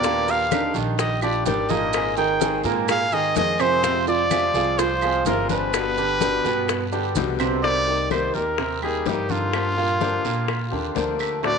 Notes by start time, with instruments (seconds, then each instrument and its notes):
Already playing: upright bass D#2, nylon-string guitar G4, trumpet D5
0.03 grand piano A#2 A#3 A#4, steel-string acoustic guitar D#3 G3 D4 G4, high bongo, long guiro, maracas
0.28 steel-string acoustic guitar G3 D4 G4, nylon-string guitar A#4, trumpet F5, high bongo, high conga, maracas
0.51 grand piano D3 D4 D#4, steel-string acoustic guitar D#3 G3 D4 G4, high bongo, high conga, short guiro, claves, maracas
0.74 upright bass A#1, grand piano D#3 D4 D#4, steel-string acoustic guitar G3 D4 G4, high bongo, high conga, short guiro, maracas
0.98 nylon-string guitar G4, trumpet D#5, muted steel-string acoustic guitar stroke, high bongo, high conga, long guiro, maracas
1.22 steel-string acoustic guitar G3 D4 G4, grand piano D4, nylon-string guitar F4, trumpet D5, high conga, claves, maracas
1.46 upright bass G#1, steel-string acoustic guitar D#3 G3 D4 G4, nylon-string guitar G4, trumpet D5, high bongo, low bongo, high conga, short guiro, maracas
1.69 grand piano A#2 A#3 A#4, nylon-string guitar G#4, trumpet D#5, high bongo, high conga, short guiro, maracas
1.92 steel-string acoustic guitar D#3 G#3 C4 G#4, high bongo, long guiro, claves, maracas
2.17 grand piano D#3 D#4 G#4, steel-string acoustic guitar G#3 C4 G#4, nylon-string guitar A#4, trumpet G5, high bongo, high conga, maracas
2.40 grand piano D#3 D#4 G#4, steel-string acoustic guitar D#3 G#3 C4 G#4, high bongo, high conga, short guiro, maracas
2.64 upright bass G#2, grand piano A#2 A#3 A#4, steel-string acoustic guitar G#3 C4 G#4, high bongo, high conga, short guiro, maracas
2.88 nylon-string guitar G#4, trumpet F5, muted steel-string acoustic guitar stroke, high bongo, high conga, long guiro, claves, maracas
3.12 grand piano D#3 D#4 G#4, steel-string acoustic guitar G#3 C4 G#4, nylon-string guitar G4, trumpet D#5, high conga, maracas
3.35 upright bass F2, steel-string acoustic guitar D#3 G#3 C4 G#4, nylon-string guitar G#4, trumpet D#5, high bongo, low bongo, high conga, short guiro, maracas
3.58 grand piano C3 C4 C5, nylon-string guitar F4, trumpet C5, high bongo, short guiro, claves, maracas
3.83 grand piano C3 C4 C5, steel-string acoustic guitar C3 F3 G#3 C4 F4, high bongo, high conga, long guiro, maracas
4.07 steel-string acoustic guitar G#3 C4 F4, nylon-string guitar F4, trumpet D5, high bongo, high conga, maracas
4.30 steel-string acoustic guitar C3 F3 G#3 C4 F4, grand piano F3 F4 G#4, high bongo, high conga, short guiro, claves, maracas
4.54 upright bass C2, grand piano F3 F4 G#4, steel-string acoustic guitar C4 F4, high bongo, high conga, short guiro, maracas
4.58 steel-string acoustic guitar G#3
4.78 nylon-string guitar F4, trumpet C5, muted steel-string acoustic guitar stroke, high bongo, high conga, long guiro, maracas
5.02 grand piano F3 F4 G#4, steel-string acoustic guitar C4 F4, high conga, claves, maracas
5.07 steel-string acoustic guitar G#3
5.25 upright bass G1, steel-string acoustic guitar C3 F3 G#3 C4 F4, nylon-string guitar F4, trumpet A#4, high bongo, low bongo, high conga, short guiro, maracas
5.49 nylon-string guitar D4, trumpet B4, grand piano B4, high bongo, high conga, short guiro, maracas
5.73 steel-string acoustic guitar B2 D3 G3 B3 G4, high bongo, high conga, long guiro, claves, maracas
5.97 grand piano D3 D4 G4, steel-string acoustic guitar G3 B3 G4, high bongo, high conga, maracas
6.20 steel-string acoustic guitar B2 D3 G3 B3 G4, grand piano D3 D4 G4, high bongo, high conga, short guiro, maracas
6.44 upright bass G2, grand piano B2 B3 B4, steel-string acoustic guitar G3 B3 G4, high bongo, high conga, short guiro, maracas
6.68 muted steel-string acoustic guitar stroke, high bongo, high conga, long guiro, claves, maracas
6.92 grand piano D3 D4 G4, steel-string acoustic guitar G3 B3 G4, high conga, maracas
7.15 upright bass C2, steel-string acoustic guitar B2 D3 G3 B3 G4, high bongo, low bongo, high conga, short guiro, maracas
7.39 grand piano C3 C4 C5, high bongo, short guiro, claves, maracas
7.63 steel-string acoustic guitar C3 G3 A#3 D#4 G4, grand piano C3 C4, trumpet D5, high bongo, high conga, long guiro
7.88 steel-string acoustic guitar A#3 D#4 G4, high bongo, high conga
8.10 steel-string acoustic guitar C3 G3 A#3 D#4 G4, grand piano D#3 D#4, trumpet C5, high bongo, high conga, short guiro, claves
8.34 upright bass D#2, steel-string acoustic guitar A#3 D#4 G4, trumpet A#4, high bongo, high conga, short guiro
8.58 grand piano C3 C4, muted steel-string acoustic guitar stroke, high bongo, high conga, long guiro
8.82 grand piano G3 G4, steel-string acoustic guitar A#3 D#4 G4, trumpet G#4, high conga, claves
9.06 upright bass G2, steel-string acoustic guitar C3 G3 A#3 D#4 G4, trumpet G4, high bongo, low bongo, high conga, short guiro
9.29 grand piano D3, trumpet F4, high bongo, high conga, short guiro
9.53 steel-string acoustic guitar D3 F3 A#3 D4 G4, high bongo, high conga, long guiro, claves
9.77 grand piano A#2 A#3, steel-string acoustic guitar A#3 D4 G4, high bongo, high conga
10.00 steel-string acoustic guitar D3 F3 A#3 D4 G4, grand piano D3 D4, high bongo, high conga, short guiro
10.24 upright bass A#2, grand piano A#2 A#3, steel-string acoustic guitar A#3 D4 G4, high bongo, high conga, short guiro
10.48 muted steel-string acoustic guitar stroke, high bongo, high conga, long guiro, claves
10.71 upright bass D#2, grand piano D3 D4, steel-string acoustic guitar A#3 D4 G4, high conga
10.95 upright bass D2, steel-string acoustic guitar D3 F3 A#3 D4 G4, high bongo, low bongo, high conga, short guiro
11.19 grand piano A3 A4, high bongo, short guiro, claves
11.43 grand piano A2 A3, steel-string acoustic guitar D3 A3 C4 F#4, trumpet D5, high bongo, high conga, long guiro